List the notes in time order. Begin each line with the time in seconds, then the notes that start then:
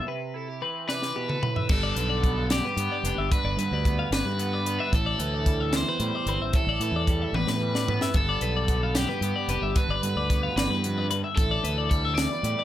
0.07 C3 B4
0.34 E4 A4
0.48 G4
0.62 E3 C4 B4
0.88 C3 B4 D5, snare
1.02 snare
1.16 B2 G4
1.29 A4, mid tom
1.42 A2 B4, mid tom
1.56 E5, floor tom
1.69 G1 G2 A4, kick, crash
1.83 D5
1.96 B1 D3 B4, closed hi-hat
2.10 D5
2.24 B3, kick, closed hi-hat
2.38 F5
2.50 G2 G4 D5, snare, closed hi-hat
2.65 B4
2.77 G2 B3, closed hi-hat
2.92 D5
3.04 F1 D4 B4, closed hi-hat
3.18 G1 E5
3.32 G2 B4, kick, closed hi-hat
3.44 G1 D5
3.57 G2 D3 B4, closed hi-hat
3.71 D2 D5
3.85 B3, kick, closed hi-hat
3.99 F5
4.11 G1 G2 B4 D5, snare, closed hi-hat
4.25 G2 B4
4.39 B3, closed hi-hat
4.53 D5
4.66 B3 B4, closed hi-hat
4.79 D4 E5
4.91 A1 A2 A4, kick, closed hi-hat
5.06 D5
5.19 D2 E3 B4, closed hi-hat
5.34 D5
5.46 G3, kick, closed hi-hat
5.60 E5
5.73 E2 C5 D5, snare, closed hi-hat
5.89 B4
6.00 A2 G3, closed hi-hat
6.15 D5
6.26 G1 C4 B4, closed hi-hat
6.40 A1 E5
6.53 A2 A4, kick, closed hi-hat
6.67 A1 D5
6.79 A2 E3 B4, closed hi-hat
6.92 E2
6.96 D5
7.07 G3, kick, closed hi-hat
7.22 E5
7.33 A1 E2 B4 D5, high tom
7.47 A2 B4, snare
7.61 G3
7.75 D5, snare
7.88 B3 B4, floor tom
8.01 E5, snare
8.14 G1 G2 A4, kick, closed hi-hat
8.29 D5
8.41 B1 D3 B4, closed hi-hat
8.56 D5
8.68 B3, kick, closed hi-hat
8.83 F5
8.95 G2 G4 D5, snare, closed hi-hat
9.09 B4
9.21 G2 B3, closed hi-hat
9.36 D5
9.48 F1 D4 B4, closed hi-hat
9.61 G1 E5
9.76 G2 B4, kick, closed hi-hat
9.89 G1 D5
10.02 G2 D3 B4, closed hi-hat
10.16 D2 D5
10.30 B3, kick, closed hi-hat
10.43 F5
10.56 G1 E2 B4 D5, snare, closed hi-hat
10.69 G2 B4
10.84 F2, closed hi-hat
10.98 D5
11.11 G2 B4, closed hi-hat
11.24 E5
11.36 A1 A2 A4, kick, closed hi-hat
11.51 D5
11.64 D2 E3 B4, closed hi-hat
11.78 D5
11.90 G3 A4, kick, closed hi-hat
12.05 E5
12.15 E2 D5, snare, closed hi-hat
12.32 B4
12.43 A2 G3, closed hi-hat
12.59 D5